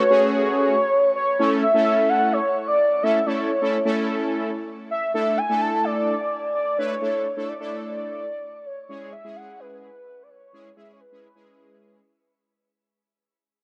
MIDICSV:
0, 0, Header, 1, 3, 480
1, 0, Start_track
1, 0, Tempo, 468750
1, 1424, Time_signature, 4, 2, 24, 8
1, 13963, End_track
2, 0, Start_track
2, 0, Title_t, "Soft synth lead"
2, 0, Program_c, 0, 80
2, 0, Note_on_c, 0, 73, 98
2, 430, Note_off_c, 0, 73, 0
2, 463, Note_on_c, 0, 73, 105
2, 1143, Note_off_c, 0, 73, 0
2, 1183, Note_on_c, 0, 73, 92
2, 1407, Note_off_c, 0, 73, 0
2, 1424, Note_on_c, 0, 73, 101
2, 1532, Note_off_c, 0, 73, 0
2, 1663, Note_on_c, 0, 76, 106
2, 2143, Note_on_c, 0, 78, 107
2, 2158, Note_off_c, 0, 76, 0
2, 2383, Note_on_c, 0, 73, 101
2, 2398, Note_off_c, 0, 78, 0
2, 2737, Note_off_c, 0, 73, 0
2, 2743, Note_on_c, 0, 74, 97
2, 3104, Note_on_c, 0, 76, 93
2, 3119, Note_off_c, 0, 74, 0
2, 3343, Note_on_c, 0, 73, 91
2, 3359, Note_off_c, 0, 76, 0
2, 4064, Note_off_c, 0, 73, 0
2, 5025, Note_on_c, 0, 76, 102
2, 5248, Note_off_c, 0, 76, 0
2, 5265, Note_on_c, 0, 76, 109
2, 5505, Note_on_c, 0, 80, 106
2, 5520, Note_off_c, 0, 76, 0
2, 5745, Note_on_c, 0, 81, 107
2, 5760, Note_off_c, 0, 80, 0
2, 5985, Note_on_c, 0, 74, 114
2, 6000, Note_off_c, 0, 81, 0
2, 6699, Note_off_c, 0, 74, 0
2, 6705, Note_on_c, 0, 74, 101
2, 6945, Note_on_c, 0, 73, 108
2, 6961, Note_off_c, 0, 74, 0
2, 7664, Note_on_c, 0, 74, 101
2, 7680, Note_off_c, 0, 73, 0
2, 8140, Note_off_c, 0, 74, 0
2, 8146, Note_on_c, 0, 74, 107
2, 8866, Note_on_c, 0, 73, 93
2, 8882, Note_off_c, 0, 74, 0
2, 9100, Note_off_c, 0, 73, 0
2, 9106, Note_on_c, 0, 73, 100
2, 9328, Note_off_c, 0, 73, 0
2, 9347, Note_on_c, 0, 76, 94
2, 9586, Note_on_c, 0, 78, 100
2, 9602, Note_off_c, 0, 76, 0
2, 9828, Note_on_c, 0, 71, 90
2, 9843, Note_off_c, 0, 78, 0
2, 10060, Note_off_c, 0, 71, 0
2, 10066, Note_on_c, 0, 71, 93
2, 10474, Note_on_c, 0, 74, 68
2, 10489, Note_off_c, 0, 71, 0
2, 10546, Note_on_c, 0, 73, 98
2, 10561, Note_off_c, 0, 74, 0
2, 11020, Note_off_c, 0, 73, 0
2, 11026, Note_on_c, 0, 76, 104
2, 11182, Note_off_c, 0, 76, 0
2, 11193, Note_on_c, 0, 73, 62
2, 11265, Note_on_c, 0, 71, 83
2, 11281, Note_off_c, 0, 73, 0
2, 12225, Note_off_c, 0, 71, 0
2, 13963, End_track
3, 0, Start_track
3, 0, Title_t, "Analog polysynth"
3, 0, Program_c, 1, 90
3, 104, Note_on_c, 1, 57, 76
3, 104, Note_on_c, 1, 61, 73
3, 104, Note_on_c, 1, 66, 71
3, 104, Note_on_c, 1, 68, 87
3, 775, Note_off_c, 1, 57, 0
3, 775, Note_off_c, 1, 61, 0
3, 775, Note_off_c, 1, 66, 0
3, 775, Note_off_c, 1, 68, 0
3, 1424, Note_on_c, 1, 57, 75
3, 1424, Note_on_c, 1, 61, 73
3, 1424, Note_on_c, 1, 64, 70
3, 1424, Note_on_c, 1, 69, 84
3, 1676, Note_off_c, 1, 57, 0
3, 1676, Note_off_c, 1, 61, 0
3, 1676, Note_off_c, 1, 64, 0
3, 1676, Note_off_c, 1, 69, 0
3, 1784, Note_on_c, 1, 57, 74
3, 1784, Note_on_c, 1, 64, 68
3, 1784, Note_on_c, 1, 69, 87
3, 1785, Note_on_c, 1, 61, 71
3, 2455, Note_off_c, 1, 69, 0
3, 2456, Note_off_c, 1, 57, 0
3, 2456, Note_off_c, 1, 61, 0
3, 2456, Note_off_c, 1, 64, 0
3, 3104, Note_on_c, 1, 57, 82
3, 3105, Note_on_c, 1, 61, 75
3, 3105, Note_on_c, 1, 64, 75
3, 3105, Note_on_c, 1, 69, 90
3, 3272, Note_off_c, 1, 57, 0
3, 3272, Note_off_c, 1, 61, 0
3, 3272, Note_off_c, 1, 64, 0
3, 3272, Note_off_c, 1, 69, 0
3, 3344, Note_on_c, 1, 57, 76
3, 3344, Note_on_c, 1, 61, 70
3, 3344, Note_on_c, 1, 64, 70
3, 3344, Note_on_c, 1, 69, 82
3, 3596, Note_off_c, 1, 57, 0
3, 3596, Note_off_c, 1, 61, 0
3, 3596, Note_off_c, 1, 64, 0
3, 3596, Note_off_c, 1, 69, 0
3, 3704, Note_on_c, 1, 57, 76
3, 3704, Note_on_c, 1, 64, 71
3, 3704, Note_on_c, 1, 69, 87
3, 3705, Note_on_c, 1, 61, 70
3, 3872, Note_off_c, 1, 57, 0
3, 3872, Note_off_c, 1, 61, 0
3, 3872, Note_off_c, 1, 64, 0
3, 3872, Note_off_c, 1, 69, 0
3, 3944, Note_on_c, 1, 57, 91
3, 3944, Note_on_c, 1, 61, 86
3, 3944, Note_on_c, 1, 64, 81
3, 3944, Note_on_c, 1, 69, 102
3, 4615, Note_off_c, 1, 61, 0
3, 4615, Note_off_c, 1, 64, 0
3, 4616, Note_off_c, 1, 57, 0
3, 4616, Note_off_c, 1, 69, 0
3, 5264, Note_on_c, 1, 62, 71
3, 5264, Note_on_c, 1, 64, 70
3, 5264, Note_on_c, 1, 69, 84
3, 5265, Note_on_c, 1, 57, 78
3, 5516, Note_off_c, 1, 57, 0
3, 5516, Note_off_c, 1, 62, 0
3, 5516, Note_off_c, 1, 64, 0
3, 5516, Note_off_c, 1, 69, 0
3, 5624, Note_on_c, 1, 62, 70
3, 5624, Note_on_c, 1, 64, 70
3, 5624, Note_on_c, 1, 69, 88
3, 5625, Note_on_c, 1, 57, 79
3, 6295, Note_off_c, 1, 62, 0
3, 6296, Note_off_c, 1, 57, 0
3, 6296, Note_off_c, 1, 64, 0
3, 6296, Note_off_c, 1, 69, 0
3, 6944, Note_on_c, 1, 62, 75
3, 6944, Note_on_c, 1, 64, 73
3, 6944, Note_on_c, 1, 71, 90
3, 6945, Note_on_c, 1, 57, 81
3, 7112, Note_off_c, 1, 57, 0
3, 7112, Note_off_c, 1, 62, 0
3, 7112, Note_off_c, 1, 64, 0
3, 7112, Note_off_c, 1, 71, 0
3, 7184, Note_on_c, 1, 62, 70
3, 7185, Note_on_c, 1, 57, 76
3, 7185, Note_on_c, 1, 64, 72
3, 7185, Note_on_c, 1, 69, 84
3, 7436, Note_off_c, 1, 57, 0
3, 7436, Note_off_c, 1, 62, 0
3, 7436, Note_off_c, 1, 64, 0
3, 7436, Note_off_c, 1, 69, 0
3, 7544, Note_on_c, 1, 64, 73
3, 7544, Note_on_c, 1, 69, 84
3, 7545, Note_on_c, 1, 57, 79
3, 7545, Note_on_c, 1, 62, 71
3, 7712, Note_off_c, 1, 57, 0
3, 7712, Note_off_c, 1, 62, 0
3, 7712, Note_off_c, 1, 64, 0
3, 7712, Note_off_c, 1, 69, 0
3, 7784, Note_on_c, 1, 64, 71
3, 7785, Note_on_c, 1, 57, 81
3, 7785, Note_on_c, 1, 62, 71
3, 7785, Note_on_c, 1, 69, 87
3, 8456, Note_off_c, 1, 57, 0
3, 8456, Note_off_c, 1, 62, 0
3, 8456, Note_off_c, 1, 64, 0
3, 8456, Note_off_c, 1, 69, 0
3, 9104, Note_on_c, 1, 56, 80
3, 9104, Note_on_c, 1, 61, 70
3, 9104, Note_on_c, 1, 64, 70
3, 9105, Note_on_c, 1, 68, 83
3, 9356, Note_off_c, 1, 56, 0
3, 9356, Note_off_c, 1, 61, 0
3, 9356, Note_off_c, 1, 64, 0
3, 9356, Note_off_c, 1, 68, 0
3, 9465, Note_on_c, 1, 56, 75
3, 9465, Note_on_c, 1, 61, 71
3, 9465, Note_on_c, 1, 64, 71
3, 9465, Note_on_c, 1, 68, 86
3, 10136, Note_off_c, 1, 56, 0
3, 10136, Note_off_c, 1, 61, 0
3, 10136, Note_off_c, 1, 64, 0
3, 10136, Note_off_c, 1, 68, 0
3, 10784, Note_on_c, 1, 56, 82
3, 10784, Note_on_c, 1, 61, 76
3, 10784, Note_on_c, 1, 64, 77
3, 10784, Note_on_c, 1, 68, 93
3, 10952, Note_off_c, 1, 56, 0
3, 10952, Note_off_c, 1, 61, 0
3, 10952, Note_off_c, 1, 64, 0
3, 10952, Note_off_c, 1, 68, 0
3, 11025, Note_on_c, 1, 56, 78
3, 11025, Note_on_c, 1, 61, 68
3, 11025, Note_on_c, 1, 64, 72
3, 11025, Note_on_c, 1, 68, 86
3, 11276, Note_off_c, 1, 56, 0
3, 11276, Note_off_c, 1, 61, 0
3, 11276, Note_off_c, 1, 64, 0
3, 11276, Note_off_c, 1, 68, 0
3, 11384, Note_on_c, 1, 56, 77
3, 11384, Note_on_c, 1, 61, 71
3, 11384, Note_on_c, 1, 64, 70
3, 11384, Note_on_c, 1, 68, 84
3, 11552, Note_off_c, 1, 56, 0
3, 11552, Note_off_c, 1, 61, 0
3, 11552, Note_off_c, 1, 64, 0
3, 11552, Note_off_c, 1, 68, 0
3, 11624, Note_on_c, 1, 56, 78
3, 11624, Note_on_c, 1, 61, 70
3, 11624, Note_on_c, 1, 64, 72
3, 11624, Note_on_c, 1, 68, 89
3, 12295, Note_off_c, 1, 56, 0
3, 12295, Note_off_c, 1, 61, 0
3, 12295, Note_off_c, 1, 64, 0
3, 12296, Note_off_c, 1, 68, 0
3, 13963, End_track
0, 0, End_of_file